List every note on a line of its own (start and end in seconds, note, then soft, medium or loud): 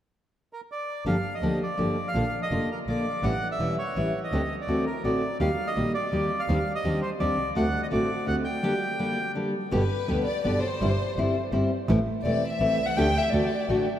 0.53 0.61 A#4 medium
0.72 1.04 D5 medium
1.06 1.21 G1 medium
1.06 1.15 D3 medium
1.06 1.15 F3 medium
1.06 1.15 A#3 medium
1.06 1.15 D4 medium
1.06 1.15 G4 medium
1.06 1.35 F5 medium
1.35 1.59 D#5 medium
1.42 1.57 D2 soft
1.42 1.60 D3 soft
1.42 1.59 F3 soft
1.42 1.60 A#3 soft
1.42 1.60 D4 medium
1.42 1.60 G4 medium
1.63 2.08 D5 medium
1.78 1.93 G1 soft
1.78 1.95 D3 soft
1.78 1.95 F3 soft
1.78 1.95 A#3 medium
1.78 1.95 D4 soft
1.78 1.96 G4 medium
2.08 2.40 F5 medium
2.14 2.30 A#1 medium
2.14 2.23 D3 medium
2.14 2.23 A#3 medium
2.14 2.24 D4 medium
2.14 2.24 F4 medium
2.42 2.70 D#5 medium
2.51 2.66 F1 soft
2.51 2.68 D3 soft
2.51 2.68 A#3 medium
2.51 2.68 D4 medium
2.51 2.68 F4 medium
2.71 2.79 A#4 medium
2.87 3.02 A#1 soft
2.87 3.04 D3 medium
2.87 3.04 A#3 medium
2.87 3.05 D4 medium
2.87 3.04 F4 medium
2.87 3.25 D5 medium
3.23 3.38 A1 medium
3.23 3.32 E3 medium
3.23 3.32 G3 medium
3.23 3.32 C#4 medium
3.23 3.32 E4 medium
3.23 3.48 F#5 medium
3.52 3.76 E5 medium
3.59 3.74 E1 soft
3.59 3.76 E3 medium
3.59 3.76 G3 medium
3.59 3.76 C#4 medium
3.59 3.76 E4 medium
3.79 4.19 C#5 medium
3.96 4.10 A1 soft
3.96 4.12 E3 medium
3.96 4.12 G3 medium
3.96 4.12 C#4 medium
3.96 4.13 E4 medium
4.24 4.56 D#5 medium
4.32 4.46 D2 medium
4.32 4.40 D3 medium
4.32 4.41 G3 medium
4.32 4.41 C4 medium
4.32 4.41 G4 medium
4.61 4.85 D5 medium
4.68 4.83 D2 soft
4.68 4.84 D3 soft
4.68 4.85 A3 medium
4.68 4.85 C4 medium
4.68 4.85 F#4 medium
4.86 5.03 A#4 medium
5.04 5.19 A1 soft
5.04 5.21 D3 medium
5.04 5.21 A3 soft
5.04 5.21 C4 soft
5.04 5.21 F#4 medium
5.04 5.38 D5 medium
5.40 5.55 D#2 medium
5.40 5.49 D#3 medium
5.40 5.49 G3 medium
5.40 5.49 A#3 medium
5.40 5.49 D#4 medium
5.40 5.49 G4 medium
5.40 5.68 F5 medium
5.67 5.92 D#5 medium
5.76 5.91 A#1 soft
5.76 5.93 D#3 medium
5.76 5.93 G3 medium
5.76 5.93 A#3 soft
5.76 5.93 D#4 medium
5.76 5.94 G4 medium
5.94 6.41 D5 medium
6.12 6.28 D#2 soft
6.12 6.29 D#3 medium
6.12 6.30 G3 medium
6.12 6.29 A#3 medium
6.12 6.30 D#4 soft
6.12 6.30 G4 medium
6.39 6.73 F5 medium
6.48 6.63 D#2 medium
6.48 6.58 D#3 medium
6.48 6.58 G3 medium
6.48 6.58 C4 medium
6.48 6.58 D4 medium
6.48 6.58 G4 medium
6.75 7.00 D#5 medium
6.84 6.99 D#2 soft
6.84 7.01 D#3 medium
6.84 7.01 G3 medium
6.84 7.01 C4 medium
6.84 7.02 D4 medium
6.84 7.02 G4 medium
7.02 7.10 C5 medium
7.20 7.36 D#2 soft
7.20 7.37 D#3 medium
7.20 7.37 G3 medium
7.20 7.37 C4 medium
7.20 7.37 D4 medium
7.20 7.37 G4 medium
7.20 7.53 D5 medium
7.38 7.56 C2 soft
7.55 7.71 D2 medium
7.55 7.65 D3 medium
7.55 7.65 A3 medium
7.55 7.65 C4 medium
7.55 7.65 F#4 medium
7.55 7.81 F#5 medium
7.83 7.87 D#5 medium
7.91 8.08 A1 medium
7.91 8.08 D3 medium
7.91 8.09 A3 medium
7.91 8.09 C4 medium
7.91 8.09 F#4 medium
7.91 8.26 D5 medium
8.26 8.43 D2 soft
8.26 8.44 D3 soft
8.26 8.44 A3 soft
8.26 8.44 C4 medium
8.26 8.44 F#4 medium
8.26 8.36 F#5 medium
8.44 9.32 G5 medium
8.63 8.73 D3 medium
8.63 8.72 G3 medium
8.63 8.73 A#3 medium
8.63 8.73 D4 medium
8.63 8.73 G4 medium
8.99 9.17 D3 soft
8.99 9.17 G3 soft
8.99 9.17 A#3 medium
8.99 9.17 D4 medium
8.99 9.17 G4 medium
9.35 9.53 D3 soft
9.35 9.53 G3 soft
9.35 9.53 A#3 soft
9.35 9.53 D4 medium
9.35 9.54 G4 soft
9.71 9.88 G1 medium
9.71 9.81 B2 medium
9.71 9.82 D3 medium
9.71 9.82 G3 medium
9.71 9.82 B3 medium
9.71 9.82 G4 medium
9.71 10.23 B4 medium
10.08 10.25 D2 medium
10.08 10.26 B2 medium
10.08 10.26 D3 medium
10.08 10.26 G3 medium
10.08 10.26 B3 medium
10.08 10.26 G4 medium
10.26 10.43 D5 medium
10.44 10.61 G1 medium
10.44 10.62 B2 medium
10.44 10.62 D3 medium
10.44 10.62 G3 medium
10.44 10.62 B3 medium
10.44 10.62 G4 medium
10.44 10.62 D5 medium
10.63 11.35 C5 medium
10.81 10.96 G1 medium
10.81 10.90 G3 medium
10.81 10.91 C4 medium
10.81 10.91 E4 medium
11.17 11.32 G1 medium
11.17 11.34 G3 medium
11.17 11.35 C4 medium
11.17 11.35 E4 medium
11.52 11.68 G1 medium
11.52 11.69 G3 medium
11.52 11.70 C4 medium
11.52 11.70 E4 medium
11.88 12.04 A1 medium
11.88 11.98 E3 medium
11.88 11.98 A3 medium
11.88 11.98 C4 medium
11.88 11.98 E4 medium
12.24 12.39 E1 medium
12.24 12.42 E3 medium
12.24 12.41 A3 medium
12.24 12.42 C4 medium
12.24 12.42 E4 medium
12.24 12.50 D5 medium
12.52 12.85 E5 medium
12.60 12.75 A1 medium
12.60 12.77 E3 medium
12.60 12.77 A3 medium
12.60 12.77 C4 medium
12.60 12.78 E4 medium
12.78 12.95 C2 soft
12.87 12.96 F#5 medium
12.96 13.11 D2 medium
12.96 13.06 D3 medium
12.96 13.06 A3 medium
12.96 13.06 D4 medium
12.96 13.06 G4 medium
12.96 13.23 G5 loud
13.23 13.32 E5 medium
13.33 13.48 D2 medium
13.33 13.50 D3 medium
13.33 13.50 A3 medium
13.33 13.50 D4 medium
13.33 13.50 F#4 medium
13.33 13.87 D5 medium
13.69 13.84 A1 medium
13.69 13.86 D3 medium
13.69 13.86 A3 medium
13.69 13.86 D4 medium
13.69 13.87 F#4 medium